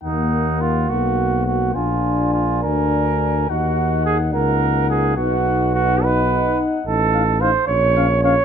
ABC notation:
X:1
M:6/8
L:1/8
Q:3/8=71
K:Ebm
V:1 name="Trumpet"
g3 g3 | a3 a3 | g3 g3 | ^f3 f3 |
[K:Bbm] z f f z f f |]
V:2 name="Flugelhorn"
E2 F G2 G | F2 F B3 | G2 A B2 A | ^F2 F =B2 z |
[K:Bbm] =A2 c d2 d |]
V:3 name="French horn"
B,3 B,3 | =D3 D3 | E3 E3 | ^D3 D3 |
[K:Bbm] z E E z D D |]
V:4 name="Trombone"
B,6 | =D6 | E3 B,3 | =B,3 ^D3- |
[K:Bbm] ^D2 z _D3 |]
V:5 name="Bass trombone" clef=bass
E,,3 C,,3 | B,,,3 =D,,3 | E,,3 D,,3 | =B,,,6 |
[K:Bbm] =A,,,3 B,,,3 |]